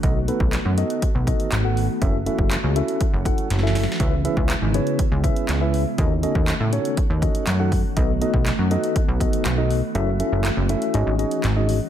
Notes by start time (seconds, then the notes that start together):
Already playing: A3 F#4
0.03 B1 D#3 B3 D#4 F#4 A4 D#5, kick, closed hi-hat
0.28 B3 D#4 F#4 A4 B4, closed hi-hat
0.40 B1, kick
0.53 snare, clap, closed hi-hat
0.65 F#2
0.77 B3 D#4 F#4 A4 D#5, closed hi-hat
0.90 closed hi-hat
1.02 kick, closed hi-hat
1.15 B1
1.27 B3 D#4 F#4 A4 D#5, kick, closed hi-hat
1.40 closed hi-hat
1.52 G#1, snare, clap, closed hi-hat
1.64 B3 D#4 F#4 A4 F#5
1.77 open hi-hat
2.01 F#1 E3 C#4 E4 F#4 A4 E5, kick, closed hi-hat
2.26 C#4 E4 F#4 A4 E5, closed hi-hat
2.39 F#1, kick
2.51 snare, clap, closed hi-hat
2.64 C#2
2.76 C#4 E4 F#4 A4 E5, closed hi-hat
2.88 closed hi-hat
3.01 kick, closed hi-hat
3.13 F#1
3.25 C#4 E4 F#4 A4 F#5, kick, closed hi-hat
3.38 closed hi-hat
3.50 F#1, snare, closed hi-hat
3.59 C#4, snare
3.63 E4 F#4 A4 E5
3.67 snare
3.75 snare, open hi-hat
3.83 snare
3.92 snare
4.00 C#2 C#3 G#3 B3 C#4 E4 G#4 B4 E5, kick, closed hi-hat
4.25 C#4 E4 G#4 B4 E5, closed hi-hat
4.37 C#2, kick
4.50 snare, clap, closed hi-hat
4.62 G#1
4.74 C#4 E4 G#4 B4 C#5, closed hi-hat
4.87 closed hi-hat
4.99 kick, closed hi-hat
5.12 C#2
5.24 C#4 E4 G#4 B4 E5, kick, closed hi-hat
5.36 closed hi-hat
5.49 C#2, snare, clap, closed hi-hat
5.61 C#4 E4 G#4 B4 E5
5.74 open hi-hat
5.98 D#2 D#3 A3 C#4 D#4 F#4 A4 D#5, kick, closed hi-hat
6.23 C#4 D#4 F#4 A4 D#5, closed hi-hat
6.35 D#2, kick
6.48 snare, clap, closed hi-hat
6.60 A2
6.72 C#4 D#4 F#4 A4 C#5, closed hi-hat
6.85 closed hi-hat
6.97 kick, closed hi-hat
7.10 D#2
7.22 C#4 D#4 F#4 A4 D#5, kick, closed hi-hat
7.35 closed hi-hat
7.47 F#2, snare, clap, closed hi-hat
7.59 C#4 D#4 F#4 A4 F#5
7.72 kick, open hi-hat
7.97 B1 B3 D#4 F#4 A4 D#5, kick, closed hi-hat
8.21 B3 D#4 F#4 A4 D#5, closed hi-hat
8.34 B1, kick
8.46 snare, clap, closed hi-hat
8.59 F#2
8.71 B3 D#4 F#4 A4 D#5, closed hi-hat
8.84 closed hi-hat
8.96 kick, closed hi-hat
9.08 B1
9.20 B3 D#4 F#4 A4 D#5, kick, closed hi-hat
9.33 closed hi-hat
9.45 B1, snare, clap, closed hi-hat
9.58 B3 D#4 F#4 A4 D#5
9.71 open hi-hat
9.95 F#1 E3 C#4 E4 F#4 A4 E5, closed hi-hat
10.19 C#4 E4 F#4 A4 E5, closed hi-hat
10.32 F#1
10.45 snare, clap, closed hi-hat
10.57 F#1
10.69 C#4 E4 F#4 A4 E5, closed hi-hat
10.82 closed hi-hat
10.94 G#1 D#3 G#3 C#4 D#4 F#4 G#4 D#5, closed hi-hat
11.07 G#1
11.19 C#4 D#4 F#4 G#4 D#5, closed hi-hat
11.31 closed hi-hat
11.44 G#1, snare, clap, closed hi-hat
11.56 C#4 D#4 F#4 G#4 D#5
11.69 open hi-hat